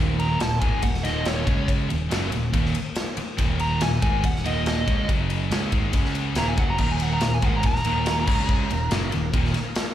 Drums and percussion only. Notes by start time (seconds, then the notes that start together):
0.19 ride
0.40 snare, ride
0.62 kick, ride
0.82 kick, ride
0.94 snare
1.05 snare, ride
1.25 snare, ride
1.47 kick, ride
1.68 kick, ride
1.90 ride
2.11 snare, ride
2.32 ride
2.54 kick, ride
2.66 snare
2.75 ride
2.96 snare, ride
3.17 ride
3.38 kick, ride
3.59 ride
3.81 snare, ride
4.02 kick, ride
4.24 kick, ride
4.36 snare
4.45 ride
4.66 snare, ride
4.88 kick, ride
5.09 kick, ride
5.30 ride
5.51 snare, ride
5.72 kick, ride
5.93 kick, ride
6.05 snare
6.15 ride
6.35 snare, ride
6.57 kick, ride
6.78 kick, crash
7.00 ride
7.21 snare, ride
7.42 kick, ride
7.63 kick, ride
7.75 snare
7.84 ride
8.06 snare, ride
8.27 kick, crash
8.49 kick
8.70 ride
8.91 snare, ride
9.12 ride
9.34 kick, ride
9.45 snare
9.54 snare, ride
9.75 snare, ride